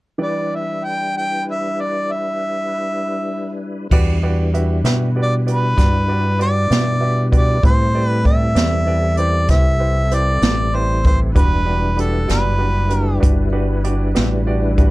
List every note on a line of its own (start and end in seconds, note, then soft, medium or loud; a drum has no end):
0.18 3.86 E3 soft
0.18 3.87 G3 medium
0.18 3.87 D4 medium
0.18 3.86 E4 soft
0.18 3.87 E4 medium
0.18 3.87 G4 soft
0.18 3.87 B4 soft
0.18 3.87 D5 soft
0.22 0.57 D5 medium
0.55 0.86 E5 medium
0.85 1.13 G5 medium
1.17 1.43 G5 medium
1.51 1.82 E5 medium
1.81 2.13 D5 medium
2.12 3.63 E5 medium
3.90 4.81 E2 medium
3.90 7.59 G3 medium
3.90 7.59 D4 medium
3.90 7.59 E4 medium
3.90 4.15 F#4 medium
3.90 4.15 G4 medium
3.90 7.59 B4 medium
3.90 4.15 B4 medium
3.90 4.15 D5 medium
3.90 kick medium
3.90 crash medium
4.23 4.46 F#4 medium
4.23 4.45 G4 medium
4.23 4.46 B4 medium
4.23 4.46 D5 medium
4.54 4.76 F#4 medium
4.54 4.76 G4 medium
4.54 4.77 B4 soft
4.54 4.76 E5 medium
4.54 closed hi-hat medium
4.84 5.74 B2 medium
4.84 5.07 F#4 medium
4.84 5.07 G4 medium
4.84 5.07 B4 medium
4.84 5.07 E5 medium
4.84 snare medium
4.84 closed hi-hat medium
5.16 5.39 F#4 soft
5.16 5.39 G4 soft
5.16 5.39 B4 soft
5.16 5.39 D5 medium
5.22 5.35 D5 medium
5.46 5.70 F#4 soft
5.46 5.70 G4 soft
5.46 5.69 B4 soft
5.46 5.69 D5 soft
5.46 closed hi-hat medium
5.52 6.38 B4 medium
5.77 6.68 G2 medium
5.77 6.00 F#4 soft
5.77 6.00 G4 soft
5.77 6.00 B4 soft
5.77 6.00 D5 medium
5.77 kick medium
5.77 snare soft
5.77 closed hi-hat medium
6.08 6.31 F#4 soft
6.08 6.32 G4 soft
6.08 6.31 B4 soft
6.08 6.32 D5 soft
6.39 6.63 F#4 medium
6.39 6.62 G4 soft
6.39 6.62 B4 soft
6.39 6.62 D5 medium
6.39 7.30 D5 medium
6.39 closed hi-hat medium
6.70 7.61 B2 medium
6.70 6.94 F#4 soft
6.70 6.93 G4 soft
6.70 6.93 B4 soft
6.70 6.94 E5 medium
6.70 snare loud
6.70 closed hi-hat medium
7.00 7.24 F#4 soft
7.00 7.24 G4 soft
7.00 7.24 B4 soft
7.00 7.24 E5 medium
7.32 7.55 F#4 soft
7.32 7.56 G4 soft
7.32 7.55 B4 soft
7.32 7.55 D5 medium
7.32 kick medium
7.32 closed hi-hat soft
7.37 7.63 D5 medium
7.63 8.54 A2 medium
7.63 11.32 G3 medium
7.63 11.33 C4 medium
7.63 7.86 E4 medium
7.63 11.32 E4 medium
7.63 7.86 G4 medium
7.63 11.32 A4 medium
7.63 7.86 B4 medium
7.63 7.86 C5 medium
7.63 8.07 C5 medium
7.63 kick loud
7.63 closed hi-hat medium
7.94 8.17 E4 soft
7.94 8.18 G4 soft
7.94 8.18 B4 soft
7.94 8.18 D5 medium
8.07 8.22 B4 medium
8.24 8.48 E4 soft
8.24 8.48 G4 soft
8.24 8.48 B4 soft
8.24 8.48 D5 medium
8.24 9.19 E5 medium
8.24 kick medium
8.24 closed hi-hat soft
8.55 9.46 E2 medium
8.55 8.79 E4 medium
8.55 8.79 G4 soft
8.55 8.79 B4 soft
8.55 8.79 D5 medium
8.55 snare medium
8.55 closed hi-hat medium
8.87 9.11 E4 medium
8.87 9.10 G4 soft
8.87 9.10 B4 soft
8.87 9.10 D5 medium
9.17 9.42 E4 soft
9.17 9.42 G4 soft
9.17 9.42 B4 soft
9.17 9.42 C5 medium
9.17 9.49 D5 medium
9.17 closed hi-hat soft
9.48 10.40 C2 medium
9.48 9.73 E4 medium
9.48 9.73 G4 soft
9.48 9.73 B4 soft
9.48 9.73 C5 medium
9.48 10.16 E5 medium
9.48 kick medium
9.48 snare soft
9.48 closed hi-hat medium
9.79 10.03 E4 soft
9.79 10.03 G4 soft
9.79 10.03 B4 soft
9.79 10.03 C5 medium
10.11 10.35 E4 soft
10.11 10.35 G4 soft
10.11 10.35 B4 soft
10.11 10.35 C5 medium
10.11 10.77 D5 medium
10.11 closed hi-hat medium
10.42 11.33 A1 medium
10.42 10.65 E4 medium
10.42 10.66 G4 soft
10.42 10.66 B4 soft
10.42 10.66 D5 medium
10.42 snare loud
10.42 closed hi-hat medium
10.74 10.97 E4 medium
10.74 10.97 G4 soft
10.74 10.97 B4 soft
10.74 11.06 C5 medium
10.74 10.97 D5 medium
11.04 11.29 E4 medium
11.04 11.28 G4 soft
11.04 11.29 B4 soft
11.04 11.29 C5 medium
11.04 11.20 C5 medium
11.04 kick medium
11.04 closed hi-hat medium
11.32 14.91 G3 medium
11.32 14.91 D4 medium
11.32 11.59 D4 medium
11.32 14.91 E4 medium
11.32 11.59 F#4 medium
11.32 11.59 G4 medium
11.32 14.91 B4 medium
11.32 11.59 B4 medium
11.32 kick medium
11.32 closed hi-hat medium
11.36 12.27 E1 medium
11.36 12.01 B4 medium
11.66 11.90 D4 medium
11.66 11.90 F#4 soft
11.66 11.90 G4 medium
11.66 11.90 B4 medium
11.97 12.21 D4 soft
11.97 12.21 F#4 soft
11.97 12.21 G4 soft
11.97 12.30 A4 medium
11.97 12.21 B4 medium
11.97 closed hi-hat medium
12.28 13.20 F#1 medium
12.28 12.52 D4 medium
12.28 12.52 F#4 soft
12.28 12.52 G4 soft
12.28 13.19 B4 medium
12.28 12.52 D5 medium
12.28 snare medium
12.28 closed hi-hat medium
12.58 12.83 D4 medium
12.58 12.82 F#4 soft
12.58 12.83 G4 soft
12.58 12.83 B4 medium
12.89 13.13 D4 soft
12.89 13.14 F#4 soft
12.89 13.13 G4 soft
12.89 13.13 B4 medium
12.89 closed hi-hat medium
13.20 14.13 G1 medium
13.20 13.44 D4 medium
13.20 13.45 F#4 medium
13.20 13.44 G4 medium
13.20 13.45 B4 medium
13.20 kick medium
13.20 closed hi-hat medium
13.52 13.76 D4 medium
13.52 13.76 F#4 medium
13.52 13.76 G4 medium
13.52 13.76 B4 medium
13.84 14.07 D4 medium
13.84 14.08 F#4 medium
13.84 14.08 G4 medium
13.84 14.08 D5 medium
13.84 closed hi-hat medium
14.15 14.91 A1 medium
14.15 14.38 D4 medium
14.15 14.38 F#4 medium
14.15 14.38 G4 medium
14.15 14.38 B4 medium
14.15 snare loud
14.15 closed hi-hat medium
14.47 14.70 D4 medium
14.47 14.70 F#4 medium
14.47 14.70 G4 medium
14.47 14.70 D5 medium
14.78 14.91 D4 medium
14.78 14.91 F#4 medium
14.78 14.91 G4 medium
14.78 14.91 B4 medium
14.78 kick medium
14.78 closed hi-hat medium